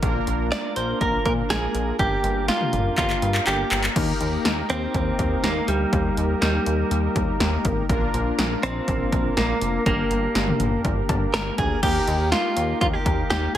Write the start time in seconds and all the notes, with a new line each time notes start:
0.03 A#1 A#3 D4 F4 A#4, kick, closed hi-hat
0.27 A#1, closed hi-hat
0.52 D5, snare, closed hi-hat
0.76 A#1 C5, closed hi-hat
1.01 A#1 A#4, kick, closed hi-hat
1.26 A#2 A#4, kick, closed hi-hat
1.50 A#1 G#4, snare, closed hi-hat
1.75 A#1, closed hi-hat
1.99 G1 A#3 D4 G4 A#4, kick, closed hi-hat
2.24 G1, closed hi-hat
2.48 F4, snare, closed hi-hat
2.61 mid tom
2.73 G1, closed hi-hat, mid tom
2.98 G1 F4, kick, clap, closed hi-hat
3.10 clap
3.22 G2, closed hi-hat
3.35 clap
3.47 G1 G4, clap, closed hi-hat
3.71 G1, clap, closed hi-hat
3.84 clap
3.96 D#2 A#3 D#4 G4 A#4, kick, closed hi-hat, crash
4.21 D#2, closed hi-hat
4.45 D#2, snare, closed hi-hat
4.70 D#2 C4, closed hi-hat
4.94 D#2, kick, closed hi-hat
5.19 D#2, kick, closed hi-hat
5.44 D#2 A#3, snare, closed hi-hat
5.68 D2 G3, closed hi-hat
5.93 D#2, kick, closed hi-hat
6.17 D#2, closed hi-hat
6.42 D#2 G3, snare, closed hi-hat
6.66 D#2, closed hi-hat
6.91 D#2, closed hi-hat
7.16 D#2, kick, closed hi-hat
7.40 D#2, snare, closed hi-hat
7.65 G#1, kick, closed hi-hat
7.89 A#1 A#3 D4 F4 A#4, kick, closed hi-hat
8.14 A#1, closed hi-hat
8.39 A#1, snare, closed hi-hat
8.63 A#1 C4, closed hi-hat
8.88 A#1, kick, closed hi-hat
9.12 A#1, kick, closed hi-hat
9.37 A#1 A#3, snare, closed hi-hat
9.61 F1, closed hi-hat
9.86 G1 A#3 D4 G4 A#4, kick, closed hi-hat
10.11 G1, closed hi-hat
10.35 G1, snare, closed hi-hat
10.48 mid tom
10.60 G1, closed hi-hat, mid tom
10.85 G1, kick, closed hi-hat
11.09 G1, kick, closed hi-hat, cowbell
11.34 G1 A#4, snare, closed hi-hat
11.58 D2 G#4, kick, closed hi-hat
11.83 D#2 A#3 D#4 G4 A#4, kick, closed hi-hat, crash
12.07 D#2, closed hi-hat
12.32 F4, snare, closed hi-hat
12.57 D#2, closed hi-hat
12.81 D#2 F4, kick, closed hi-hat
12.93 G4
13.06 D#2, kick, closed hi-hat
13.30 D#2 G4, snare, closed hi-hat